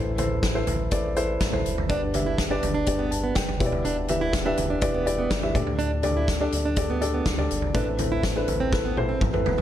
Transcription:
Already playing: A1 A2 E3 E4 A4 B4 C5 A5
0.18 E4 A4 B4 C5, closed hi-hat, floor tom
0.43 kick, snare, closed hi-hat
0.54 E4 A4 B4 C5
0.67 A1, closed hi-hat, floor tom
0.91 A1 E4 A4 B4 D5, kick, closed hi-hat
1.16 E4 A4 B4 C5, closed hi-hat
1.40 A1, kick, snare, closed hi-hat
1.53 E4 A4 B4 C5, floor tom
1.66 F#1, closed hi-hat
1.78 floor tom
1.89 G1 G2 D3 D4 G4 B4 D5, kick, closed hi-hat
2.14 D4 G4 B4 E5, closed hi-hat, floor tom
2.26 E4
2.38 kick, snare, closed hi-hat
2.51 D4 G4 B4 D5
2.63 G1, closed hi-hat, floor tom
2.74 D4
2.86 G1 D4 G4 B4 D5, kick, closed hi-hat
2.99 B3
3.11 A5, closed hi-hat
3.24 B3
3.35 F#1 B4 G5, kick, snare, closed hi-hat
3.48 floor tom
3.60 E1 B2 E4 G4 B4 C#5, kick, closed hi-hat
3.66 D5
3.72 floor tom
3.85 E1 D4, closed hi-hat
4.08 E4 G4 B4 E5, closed hi-hat, floor tom
4.21 E4
4.33 kick, snare, closed hi-hat
4.45 D4 E4 G4 B4 E5
4.57 E1, closed hi-hat, floor tom
4.70 D4
4.81 E1 E4 G4 B4 D5, kick, closed hi-hat
4.94 B3
5.06 E4 G4 B4 D5, closed hi-hat
5.18 B3
5.30 G1, kick, snare, closed hi-hat
5.42 E4 G4 B4 E5, floor tom
5.55 D2 A2 D4 G4 A4 D5, kick, closed hi-hat
5.67 floor tom
5.79 D4, closed hi-hat
6.03 D4 G4 A4 D5, closed hi-hat, floor tom
6.17 E4
6.28 kick, snare, closed hi-hat
6.41 D4 G4 A4 D5
6.52 D2, closed hi-hat
6.65 D4
6.76 D2 D4 G4 A4 D5, kick, closed hi-hat
6.90 B3
7.01 D4 G4 A4 D5, closed hi-hat
7.14 B3
7.26 D2, kick, snare, closed hi-hat
7.38 D4 G4 A4 D5, floor tom
7.51 G1, closed hi-hat
7.62 floor tom
7.74 A1 A2 E3 C4 D4 E4 A4 B4, kick, closed hi-hat
7.98 C4 E4 A4 B4, closed hi-hat, floor tom
8.12 E4
8.23 kick, snare, closed hi-hat
8.36 C4 D4 E4 A4 B4
8.48 A1, closed hi-hat, floor tom
8.60 C4
8.72 A1 C4 E4 A4 B4, kick, snare
8.85 B3
8.97 C4 E4 A4 C5, high tom
9.09 C4
9.21 A1, kick, mid tom
9.33 C4 E4 A4 B4, mid tom
9.44 F#1 B3 B4, floor tom
9.58 floor tom

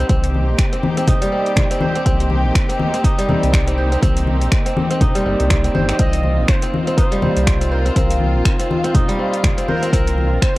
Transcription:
Already playing: G3 A#3 C4 D#4 G4 C5
0.09 C2 C4, kick, closed hi-hat, high conga
0.24 closed hi-hat
0.34 high conga
0.48 A#1
0.59 finger snap, kick, closed hi-hat
0.72 C4, closed hi-hat
0.83 high conga
0.97 C4, closed hi-hat
1.07 D#4, kick, closed hi-hat, low conga
1.22 G3, closed hi-hat
1.32 C4
1.46 closed hi-hat
1.56 finger snap, kick, closed hi-hat, low conga
1.71 C4, closed hi-hat
1.81 C5, high conga
1.95 C4, closed hi-hat
2.06 C2 C4, kick, closed hi-hat, high conga
2.20 closed hi-hat
2.30 high conga
2.45 A#1
2.55 finger snap, kick, closed hi-hat
2.69 C4, closed hi-hat
2.79 high conga
2.94 C4, closed hi-hat
3.04 D#4, kick, closed hi-hat
3.18 G3, closed hi-hat
3.29 C4, high conga, low conga
3.43 C2, closed hi-hat
3.53 finger snap, kick, closed hi-hat
3.67 C4, closed hi-hat
3.78 C5
3.92 C4, closed hi-hat
4.02 C2 C4, kick, closed hi-hat, high conga
4.17 closed hi-hat
4.27 high conga
4.41 A#1, closed hi-hat
4.52 finger snap, kick, closed hi-hat
4.66 C4, closed hi-hat
4.77 high conga
4.91 C4, closed hi-hat
5.01 D#4, kick, closed hi-hat, low conga
5.15 G3, closed hi-hat
5.25 G1 C4
5.40 C2, closed hi-hat
5.50 finger snap, kick, closed hi-hat, low conga
5.64 C4, closed hi-hat
5.75 G1 C5, high conga
5.89 C4, finger snap, closed hi-hat
5.99 C2 C4 F4 D#5, kick, closed hi-hat, high conga
6.13 closed hi-hat
6.23 high conga
6.38 A#1
6.48 C5, finger snap, kick, closed hi-hat
6.62 C4, closed hi-hat
6.74 high conga
6.87 C4, closed hi-hat
6.97 D#4 C5, kick, closed hi-hat
7.12 G3, closed hi-hat
7.22 C4, high conga, low conga
7.37 C2, closed hi-hat
7.47 finger snap, kick, closed hi-hat
7.61 C4, closed hi-hat
7.71 A#4 C5
7.85 C4, closed hi-hat
7.96 C2 C4, kick, closed hi-hat, high conga
8.10 closed hi-hat
8.20 high conga
8.35 A#1
8.45 finger snap, kick, closed hi-hat
8.59 C4, closed hi-hat
8.71 high conga
8.84 C4, closed hi-hat
8.94 D#4, kick, closed hi-hat, low conga
9.08 G3, closed hi-hat
9.19 C4
9.33 closed hi-hat
9.44 finger snap, kick, closed hi-hat, low conga
9.57 C4, closed hi-hat
9.68 A#4 C5, high conga
9.82 C4, closed hi-hat
9.93 C2 C4, kick, closed hi-hat, high conga
10.07 closed hi-hat
10.18 high conga
10.32 A#1
10.42 C5, finger snap, kick, closed hi-hat

